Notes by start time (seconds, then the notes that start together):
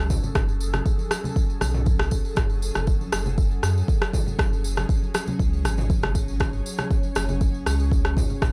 Already playing: C#2 F#3 C#4 G#4 A4
0.10 kick, mid tom, tambourine
0.23 tambourine, low conga
0.35 F#1, kick, cross-stick, mid tom, tambourine, muted conga, high conga
0.49 tambourine
0.60 tambourine
0.73 cross-stick, tambourine, high conga, low conga
0.85 kick, tambourine, muted conga
0.98 tambourine, high conga
1.10 cross-stick, tambourine, high conga
1.24 tambourine, muted conga, low conga
1.36 kick, tambourine
1.50 tambourine
1.61 B1, cross-stick, tambourine, muted conga, high conga, low conga
1.74 mid tom, tambourine
1.86 kick, tambourine, high conga
1.99 cross-stick, tambourine, muted conga, low conga
2.11 kick, tambourine
2.25 tambourine
2.35 F#1, kick, cross-stick, mid tom, tambourine, muted conga, high conga
2.50 tambourine
2.62 tambourine
2.75 F#1, cross-stick, tambourine, high conga, low conga
2.87 kick, tambourine, muted conga
3.01 tambourine, high conga
3.12 F#1, cross-stick, tambourine, high conga
3.26 tambourine, muted conga, low conga
3.38 kick, tambourine
3.51 tambourine
3.62 F#2, cross-stick, tambourine, muted conga
3.78 tambourine
3.88 kick, tambourine
4.01 cross-stick, tambourine, muted conga
4.13 kick, mid tom, tambourine
4.27 tambourine, low conga
4.39 F#1 C#5, kick, cross-stick, mid tom, tambourine, muted conga, high conga
4.53 tambourine
4.64 tambourine
4.77 cross-stick, tambourine, high conga, low conga
4.89 kick, tambourine
5.02 tambourine, high conga
5.14 cross-stick, tambourine, high conga
5.27 tambourine, muted conga, low conga
5.39 C#2, kick, tambourine
5.53 tambourine
5.64 G#1, cross-stick, tambourine, muted conga, high conga, low conga
5.78 mid tom, tambourine
5.90 kick, tambourine, high conga
6.03 cross-stick, tambourine, muted conga, low conga
6.15 kick, tambourine
6.28 tambourine
6.40 kick, cross-stick, mid tom, tambourine, muted conga
6.53 tambourine
6.66 tambourine
6.78 cross-stick, tambourine, high conga, low conga
6.91 kick, tambourine, muted conga
7.03 tambourine, high conga
7.15 F#1, cross-stick, tambourine, high conga
7.29 tambourine, muted conga, low conga
7.41 kick, tambourine
7.54 tambourine
7.66 C#2, cross-stick, tambourine, muted conga
7.80 tambourine
7.91 kick, tambourine
8.05 cross-stick, tambourine, muted conga
8.17 kick, mid tom, tambourine
8.30 tambourine, low conga
8.41 F#1, kick, cross-stick, mid tom, tambourine, muted conga, high conga